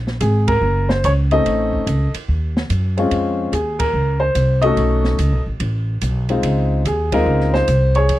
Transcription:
Already playing: upright bass A#1
0.07 snare
0.21 upright bass G#1, upright piano G#4, kick, hi-hat pedal, ride
0.48 upright piano A#4, kick, ride
0.61 upright bass F#1
0.89 upright piano C5, snare
1.04 upright bass C#2, upright piano C#5, kick, hi-hat pedal, ride
1.31 upright piano A3 C4 C#4 D#4 A4 D#5, ride
1.46 upright bass A1, kick, ride
1.73 kick
1.87 upright bass C#2, kick, hi-hat pedal, ride
2.14 muted upright bass stroke, ride
2.28 upright bass D#2, kick
2.57 snare
2.70 upright bass F#2, kick, hi-hat pedal, ride
2.97 upright piano G#3 C4 C#4 F4, ride
3.11 upright bass F2, kick, ride
3.52 upright bass D#2, upright piano G#4, kick, hi-hat pedal, ride
3.79 upright piano A#4, kick, ride
3.93 upright bass C#2
4.20 upright piano C5
4.35 upright bass C2, kick, hi-hat pedal, ride
4.62 upright piano A3 C#4 D#4 F#4 A4 D#5, ride
4.77 upright bass B1, kick, ride
5.04 snare
5.19 upright bass C#2, kick, hi-hat pedal, ride
5.32 upright bass B1
5.46 upright bass A1
5.60 upright bass A1, kick, ride
6.01 upright bass B1, kick, hi-hat pedal, ride
6.29 upright piano G#3 C4 D#4 F4, ride
6.43 upright bass C#2, kick, ride
6.85 upright bass D#2, upright piano G#4, kick, hi-hat pedal, ride
7.12 upright piano G#3 C4 D#4 F4 A#4, kick, ride
7.26 upright bass C#2
7.40 snare
7.54 upright piano C5, snare
7.68 upright bass C2, kick, hi-hat pedal, ride
7.95 upright piano G#4 C#5, ride
8.09 upright bass F2, kick, ride

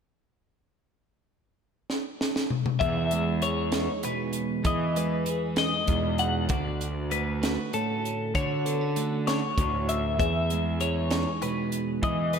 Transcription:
1.90 snare
2.21 snare
2.36 snare
2.50 mid tom
2.66 mid tom
2.80 picked electric bass E2, clean electric guitar E2 G#4 E5, kick, closed hi-hat
3.11 clean electric guitar G#3, closed hi-hat
3.42 clean electric guitar E3 G#4 C#5, closed hi-hat
3.72 clean electric guitar D#4, snare, closed hi-hat
4.03 clean electric guitar B2 G#3 B4, closed hi-hat
4.33 closed hi-hat
4.63 clean electric guitar E2 G#4 D#5, picked electric bass E3, kick, closed hi-hat
4.95 clean electric guitar G#3 B4, closed hi-hat
5.25 clean electric guitar E3 G#4, closed hi-hat
5.56 clean electric guitar D#4 D#5, snare, closed hi-hat
5.86 picked electric bass E2, clean electric guitar B2 G#3, kick, closed hi-hat
6.18 clean electric guitar F#5, closed hi-hat
6.49 picked electric bass D2, clean electric guitar D3 F#4 D5, kick, closed hi-hat
6.81 closed hi-hat
7.11 clean electric guitar A3 F#4 B4, closed hi-hat
7.42 clean electric guitar F#4, snare, closed hi-hat
7.73 clean electric guitar A2 C#4 A4, closed hi-hat
8.05 closed hi-hat
8.35 picked electric bass D3, clean electric guitar D3 F#4 C#5, kick, closed hi-hat
8.65 clean electric guitar B3 A4, closed hi-hat
8.81 clean electric guitar C#4
8.96 clean electric guitar A3 F#4, closed hi-hat
9.27 clean electric guitar F#4 C#5, snare, closed hi-hat
9.57 picked electric bass D2, clean electric guitar A2 C#4, kick, closed hi-hat
9.89 clean electric guitar E5, closed hi-hat
10.18 clean electric guitar E2 G#4 E5, picked electric bass E2, kick, closed hi-hat
10.50 clean electric guitar G#3, closed hi-hat
10.80 clean electric guitar E3 G#4 C#5, closed hi-hat
11.11 clean electric guitar D#4, snare, closed hi-hat
11.42 clean electric guitar B2 G#3 B4, closed hi-hat
11.72 closed hi-hat
12.03 clean electric guitar E2 G#4 D#5, picked electric bass E3, kick, closed hi-hat
12.33 clean electric guitar G#3 B4, closed hi-hat

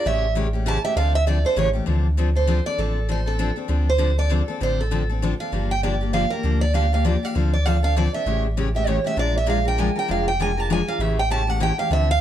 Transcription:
0.05 sub bass A1, steel-string acoustic guitar C#3 E3 A3 C#4 G4 E5
0.35 steel-string acoustic guitar C#3 E3 A3 C#4 G4
0.53 steel-string acoustic guitar A3 C#4 G4
0.66 steel-string acoustic guitar C#3 E3 A3 C#4 G4 A5
0.84 steel-string acoustic guitar A3 C#4 G4 E5
0.96 sub bass D2, steel-string acoustic guitar D3 F3 C4 D4 A4 F5
1.15 steel-string acoustic guitar E5
1.27 steel-string acoustic guitar D3 F3 C4 D4 A4 D5
1.45 steel-string acoustic guitar C4 D4 A4 C5
1.56 sub bass A1, steel-string acoustic guitar C#3 E3 A3 C#4 G4 C#5
1.73 steel-string acoustic guitar A3 C#4 G4
1.86 sub bass D2, steel-string acoustic guitar D3 F3 C4 D4 A4
2.17 steel-string acoustic guitar D3 F3 C4 D4 A4
2.35 steel-string acoustic guitar C4 D4 A4 C5
2.47 steel-string acoustic guitar D3 F3 C4 D4 A4
2.66 steel-string acoustic guitar C4 D4 A4 D5
2.78 sub bass A1, steel-string acoustic guitar D3 F3 C4 D4 A4
3.09 steel-string acoustic guitar D3 F3 C4 D4 A4 C5
3.26 steel-string acoustic guitar C4 D4 A4
3.39 steel-string acoustic guitar D3 F3 C4 D4 A4
3.56 steel-string acoustic guitar C4 D4 A4
3.68 sub bass D2, steel-string acoustic guitar D3 F3 C4 D4 A4
3.90 steel-string acoustic guitar C5
3.98 steel-string acoustic guitar D3 F3 C4 D4 A4
4.18 steel-string acoustic guitar C4 D4 A4 D5
4.30 steel-string acoustic guitar D3 F3 C4 D4 A4
4.48 steel-string acoustic guitar C4 D4 A4
4.60 sub bass A1, steel-string acoustic guitar D3 F3 C4 D4 A4 C5
4.81 steel-string acoustic guitar A4
4.91 steel-string acoustic guitar D3 F3 C4 D4 A4
5.10 steel-string acoustic guitar C4 D4 A4
5.22 steel-string acoustic guitar D3 F3 C4 D4 A4
5.40 steel-string acoustic guitar C4 D4 A4 F5
5.52 sub bass G1, steel-string acoustic guitar D3 F3 A#3 D4 G4
5.71 steel-string acoustic guitar G5
5.83 steel-string acoustic guitar D3 F3 A#3 D4 G4 D5
6.01 steel-string acoustic guitar A#3 D4 G4
6.13 steel-string acoustic guitar D3 F3 A#3 D4 G4 F5
6.30 steel-string acoustic guitar A#3 D4 G4 A#4
6.43 sub bass D2, steel-string acoustic guitar D3 F3 A#3 D4 G4
6.61 steel-string acoustic guitar D5
6.74 steel-string acoustic guitar D3 F3 A#3 D4 G4 F5
6.93 steel-string acoustic guitar A#3 D4 G4 F5
7.05 steel-string acoustic guitar D3 F3 A#3 D4 G4 D5
7.23 steel-string acoustic guitar A#3 D4 G4 F5
7.35 sub bass D2, steel-string acoustic guitar D3 F3 C4 D4 A4
7.54 steel-string acoustic guitar D5
7.66 steel-string acoustic guitar D3 F3 C4 D4 A4 F5
7.83 steel-string acoustic guitar C4 D4 A4 F5
7.96 steel-string acoustic guitar D3 F3 C4 D4 A4 D5
8.13 steel-string acoustic guitar C4 D4 A4 E5
8.26 sub bass A1, steel-string acoustic guitar C#3 E3 A3 C#4 G4
8.57 steel-string acoustic guitar C#3 E3 A3 C#4 G4
8.75 steel-string acoustic guitar A3 C#4 G4 E5
8.87 steel-string acoustic guitar C#3 E3 A3 C#4 G4 C#5
9.04 steel-string acoustic guitar A3 C#4 G4 E5
9.16 sub bass A#1, steel-string acoustic guitar F3 G#3 D4 F4 A#4 D5
9.37 steel-string acoustic guitar E5
9.46 steel-string acoustic guitar F3 G#3 D4 F4 A#4 F5
9.65 steel-string acoustic guitar D4 F4 A#4 G5
9.78 steel-string acoustic guitar F3 G#3 D4 F4 A#4 G#5
9.96 steel-string acoustic guitar D4 F4 A#4 G5
10.08 sub bass F1, steel-string acoustic guitar F3 G#3 D4 F4 A#4 F5
10.28 steel-string acoustic guitar G5
10.40 steel-string acoustic guitar F3 G#3 D4 F4 A#4 G#5
10.57 steel-string acoustic guitar D4 F4 A#4 A5
10.70 steel-string acoustic guitar F3 G#3 D4 F4 A#4 G#5
10.88 steel-string acoustic guitar D4 F4 A#4 F5
10.98 sub bass A1, steel-string acoustic guitar C#3 E3 A3 C#4 G4 E5
11.19 steel-string acoustic guitar G5
11.30 steel-string acoustic guitar C#3 E3 A3 C#4 G4 A5
11.47 steel-string acoustic guitar A3 C#4 G4 F#5
11.60 steel-string acoustic guitar C#3 E3 A3 C#4 G4 G5
11.78 steel-string acoustic guitar A3 C#4 G4 F5
11.90 sub bass D2, steel-string acoustic guitar D3 F3 C4 D4 A4 E5
12.11 steel-string acoustic guitar F5

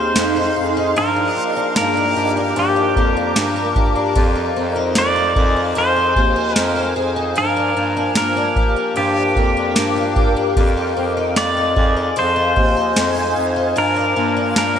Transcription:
Already playing: bass clarinet D#2, twelve-string acoustic guitar C4 D#4 G#4, ambient pad D#4 G#4 F5 C6, pedal steel guitar C5, synth texture F5
0.15 bass clarinet F2, twelve-string acoustic guitar C4, snare, ride, tambourine
0.36 twelve-string acoustic guitar D#4
0.56 bass clarinet F2, twelve-string acoustic guitar G#4
0.77 twelve-string acoustic guitar D#4
0.95 bass clarinet G2, twelve-string acoustic guitar F3, ambient pad A#4 A#5 D6, pedal steel guitar A#4, synth texture D5, ride
1.16 twelve-string acoustic guitar D4
1.36 twelve-string acoustic guitar A#3
1.57 twelve-string acoustic guitar D4
1.76 bass clarinet G2, twelve-string acoustic guitar A#3, pedal steel guitar A#4, snare, ride, tambourine
1.97 twelve-string acoustic guitar D4
2.16 bass clarinet G2, twelve-string acoustic guitar G4
2.37 twelve-string acoustic guitar D4
2.56 bass clarinet G2, twelve-string acoustic guitar F3, pedal steel guitar G4, ride
2.76 twelve-string acoustic guitar D4
2.96 bass clarinet F2, twelve-string acoustic guitar A#3, kick
3.17 twelve-string acoustic guitar D4
3.36 bass clarinet G2, twelve-string acoustic guitar A#3, snare, ride, tambourine
3.56 twelve-string acoustic guitar D4
3.76 bass clarinet G2, twelve-string acoustic guitar G4, kick
3.96 twelve-string acoustic guitar D4
4.15 bass clarinet F2, twelve-string acoustic guitar F3, synth texture A#4, ambient pad C5 F5 G#5, kick, ride
4.36 twelve-string acoustic guitar D#4
4.56 bass clarinet F2, twelve-string acoustic guitar C4
4.76 twelve-string acoustic guitar D#4
4.95 bass clarinet F2, twelve-string acoustic guitar C4, pedal steel guitar D5, snare, ride, tambourine
5.16 twelve-string acoustic guitar D#4
5.36 bass clarinet F2, twelve-string acoustic guitar G#4, kick
5.56 twelve-string acoustic guitar D#4
5.75 bass clarinet F2, twelve-string acoustic guitar F3, pedal steel guitar C5, ride
5.96 twelve-string acoustic guitar D#4
6.16 bass clarinet D#2, twelve-string acoustic guitar C4, kick
6.36 twelve-string acoustic guitar D#4
6.56 bass clarinet F2, twelve-string acoustic guitar C4, pedal steel guitar A#4, snare, ride, tambourine
6.76 twelve-string acoustic guitar D#4
6.96 bass clarinet F2, twelve-string acoustic guitar G#4
7.16 twelve-string acoustic guitar D#4
7.34 bass clarinet G2, twelve-string acoustic guitar F3, ambient pad A#4 F5 G5 D6, pedal steel guitar A#4, ride
7.57 twelve-string acoustic guitar D4
7.75 bass clarinet G2, twelve-string acoustic guitar A#3
7.97 twelve-string acoustic guitar D4
8.15 bass clarinet G2, twelve-string acoustic guitar A#3, pedal steel guitar A#4, synth texture F5, snare, ride, tambourine
8.37 twelve-string acoustic guitar D4
8.56 twelve-string acoustic guitar G4, kick
8.76 twelve-string acoustic guitar D4
8.96 bass clarinet G2, twelve-string acoustic guitar F3, pedal steel guitar G4, ride
9.17 twelve-string acoustic guitar D4
9.36 bass clarinet F2, twelve-string acoustic guitar A#3, kick
9.57 twelve-string acoustic guitar D4
9.76 bass clarinet G2, twelve-string acoustic guitar A#3, snare, ride, tambourine
9.96 twelve-string acoustic guitar D4
10.16 bass clarinet G2, twelve-string acoustic guitar G4, kick
10.37 twelve-string acoustic guitar D4
10.55 bass clarinet F2, twelve-string acoustic guitar F3, ambient pad C5 G#5, kick, ride
10.77 twelve-string acoustic guitar D#4
10.96 bass clarinet F2, twelve-string acoustic guitar C4
11.17 twelve-string acoustic guitar D#4
11.36 bass clarinet F2, twelve-string acoustic guitar C4, pedal steel guitar D5, snare, ride, tambourine
11.57 twelve-string acoustic guitar D#4
11.75 bass clarinet F2, twelve-string acoustic guitar G#4, synth texture G#5, kick
11.97 twelve-string acoustic guitar D#4
12.02 synth texture C6
12.16 bass clarinet F2, twelve-string acoustic guitar F3, pedal steel guitar C5, ride
12.36 twelve-string acoustic guitar D#4
12.56 bass clarinet D#2, twelve-string acoustic guitar C4, kick
12.77 twelve-string acoustic guitar D#4
12.96 bass clarinet F2, twelve-string acoustic guitar C4, snare, ride, tambourine
13.16 twelve-string acoustic guitar D#4
13.36 bass clarinet F2, twelve-string acoustic guitar G#4
13.56 twelve-string acoustic guitar D#4
13.75 bass clarinet G2, twelve-string acoustic guitar F3, ambient pad A#4 G5 D6, pedal steel guitar A#4, ride
13.96 twelve-string acoustic guitar D4
14.16 bass clarinet G2, twelve-string acoustic guitar A#3
14.37 twelve-string acoustic guitar D4
14.56 bass clarinet G2, twelve-string acoustic guitar A#3, pedal steel guitar A#4, snare, ride, tambourine
14.76 twelve-string acoustic guitar D4

